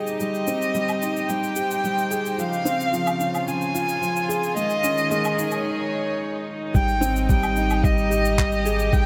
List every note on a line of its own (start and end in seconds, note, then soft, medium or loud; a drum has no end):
0.00 2.36 G#1 medium
0.00 0.20 G3 medium
0.00 0.47 C4 medium
0.00 1.02 D#4 medium
0.00 3.26 D#4 medium
0.00 1.56 G4 medium
0.00 3.26 G4 medium
0.00 0.18 G#4 medium
0.00 4.57 C5 medium
0.00 0.16 D#5 medium
0.07 shaker soft
0.20 0.36 G3 medium
0.20 1.31 D#5 loud
0.20 shaker soft
0.34 shaker soft
0.47 0.73 C4 medium
0.47 shaker medium
0.62 shaker soft
0.75 1.01 G3 medium
0.75 shaker medium
0.88 low woodblock medium
0.88 shaker soft
1.02 1.28 D#4 medium
1.02 shaker medium
1.17 shaker soft
1.29 1.45 G3 medium
1.29 2.41 G5 loud
1.29 shaker medium
1.43 shaker soft
1.56 1.72 G4 medium
1.56 shaker medium
1.71 shaker medium
1.84 2.10 G3 medium
1.84 shaker soft
1.98 shaker soft
2.11 2.37 G#4 loud
2.11 shaker medium
2.26 shaker soft
2.38 4.54 C#2 medium
2.38 4.57 C#3 medium
2.38 2.54 F3 medium
2.38 3.50 F5 loud
2.38 shaker medium
2.53 shaker soft
2.65 2.91 C4 medium
2.65 shaker medium
2.80 shaker soft
2.93 3.19 F3 loud
2.93 shaker medium
3.07 low woodblock medium
3.07 shaker soft
3.20 3.46 C#4 medium
3.20 shaker medium
3.29 5.44 F4 medium
3.35 low woodblock medium
3.35 shaker soft
3.47 3.63 F3 medium
3.47 4.56 G#5 loud
3.47 shaker medium
3.61 shaker soft
3.74 3.90 F4 medium
3.74 shaker medium
3.89 shaker medium
4.01 4.28 F3 medium
4.01 shaker medium
4.16 shaker soft
4.29 4.55 G#4 loud
4.29 shaker medium
4.43 shaker soft
4.56 5.66 D#2 medium
4.56 6.75 D#3 medium
4.56 4.72 G#3 medium
4.56 5.62 D#5 loud
4.56 shaker medium
4.70 shaker soft
4.84 5.10 C#4 loud
4.84 shaker medium
4.92 9.06 D#4 medium
4.98 shaker soft
5.11 5.37 G#3 loud
5.11 shaker medium
5.16 6.75 G#4 medium
5.24 low woodblock medium
5.24 shaker soft
5.38 5.64 D#4 medium
5.38 shaker medium
5.51 6.75 C#5 medium
5.51 low woodblock soft
5.51 shaker soft
6.74 9.06 G#1 medium
6.74 6.90 G3 medium
6.74 7.25 G5 loud
6.74 kick loud
6.74 shaker medium
6.88 shaker soft
7.01 7.27 C4 loud
7.01 9.06 D#5 medium
7.01 shaker medium
7.16 shaker soft
7.29 7.55 G3 loud
7.29 9.06 G4 medium
7.29 7.86 G5 medium
7.29 kick loud
7.29 shaker medium
7.43 low woodblock medium
7.43 shaker soft
7.56 7.83 D#4 medium
7.56 shaker medium
7.70 low woodblock medium
7.70 shaker soft
7.83 7.99 G3 medium
7.83 8.94 D#5 medium
7.83 kick loud
7.83 shaker medium
7.98 shaker soft
8.10 8.26 G4 medium
8.10 shaker medium
8.25 shaker soft
8.38 8.64 G3 medium
8.38 kick loud
8.38 clap medium
8.38 shaker medium
8.52 shaker soft
8.65 8.92 G#4 loud
8.65 shaker medium
8.79 shaker soft
8.92 9.06 G3 medium
8.92 9.06 G5 loud
8.92 kick loud
8.92 shaker medium